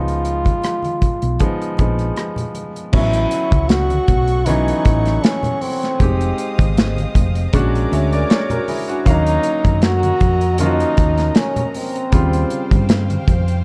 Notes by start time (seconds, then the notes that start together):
Already playing: C#2 F3 G#3 B3 D#4 F4
0.08 closed hi-hat
0.25 closed hi-hat
0.45 kick, closed hi-hat, high conga
0.62 cross-stick, closed hi-hat, muted conga
0.83 closed hi-hat, high conga
1.01 muted fingered electric bass stroke, kick, closed hi-hat, muted conga, high conga, low conga
1.22 B1, closed hi-hat
1.39 F3 G#3 B3 D#4, kick, closed hi-hat, high conga
1.62 closed hi-hat
1.77 A#1 F3 G#3 B3 D#4, kick, closed hi-hat, muted conga
1.99 cross-stick, closed hi-hat
2.16 cross-stick, closed hi-hat, muted conga
2.36 closed hi-hat, low conga
2.54 closed hi-hat, muted conga
2.76 closed hi-hat
2.93 A1 F#3 B3 C#4 E4 A4 F#5 C#6, kick, crash, low conga
3.13 closed hi-hat
3.31 closed hi-hat, muted conga
3.51 C#2, kick, closed hi-hat, high conga
3.69 F#4, snare, closed hi-hat
3.90 closed hi-hat, high conga
4.08 B1, kick, closed hi-hat, muted conga, low conga
4.28 closed hi-hat
4.46 E3 F#3 B3 C#4 D#4, closed hi-hat, high conga
4.68 closed hi-hat
4.85 A1, kick, closed hi-hat
5.05 snare, closed hi-hat
5.23 C#4, snare, closed hi-hat
5.43 closed hi-hat, low conga
5.61 C4, open hi-hat
5.83 snare, closed hi-hat
6.00 F1 G#3 C4 D#4 G4 C5 D#5 F5 D#6, kick, closed hi-hat, muted conga, low conga
6.21 closed hi-hat
6.38 closed hi-hat
6.58 G#1, kick, closed hi-hat, high conga
6.76 snare, closed hi-hat, muted conga
6.97 closed hi-hat, high conga
7.15 F1, kick, closed hi-hat, muted conga, low conga
7.35 closed hi-hat
7.53 A#1 G#3 C#4 D4 F#4 A#4 G#5 A#5 D6, kick, closed hi-hat, high conga
7.75 closed hi-hat
7.92 D2 C#5 E5, closed hi-hat, muted conga
8.12 A#4 D5, closed hi-hat
8.30 A#4 C#5, snare, closed hi-hat
8.50 F#4 A#4, closed hi-hat, low conga
8.68 E4 G#4, open hi-hat, muted conga
8.88 D4 F#4, closed hi-hat
9.05 D#2 F#3 A#3 C#4 A#4 D#5 F5, kick, closed hi-hat, low conga
9.10 D#4
9.26 closed hi-hat
9.43 closed hi-hat, muted conga
9.64 F#2, kick, closed hi-hat, high conga
9.82 F#4, snare, closed hi-hat
10.03 closed hi-hat, high conga
10.20 F2, kick, closed hi-hat, muted conga, low conga
10.41 closed hi-hat
10.58 F3 A#3 C#4 D#4 F4, closed hi-hat, high conga
10.65 F#4
10.80 closed hi-hat
10.97 D#2, kick, closed hi-hat
11.18 snare, closed hi-hat
11.35 C#4, snare, closed hi-hat, muted conga
11.56 closed hi-hat, low conga
11.70 C#4
11.74 C4, open hi-hat
11.96 closed hi-hat
12.11 D#2 C#3 G3 C4 F4 C5 F5 G5, kick, closed hi-hat, low conga
12.33 closed hi-hat
12.50 closed hi-hat, muted conga
12.71 G2, kick, closed hi-hat, high conga
12.89 snare, closed hi-hat
13.10 closed hi-hat, high conga
13.28 F2, kick, closed hi-hat, muted conga, high conga, low conga
13.48 closed hi-hat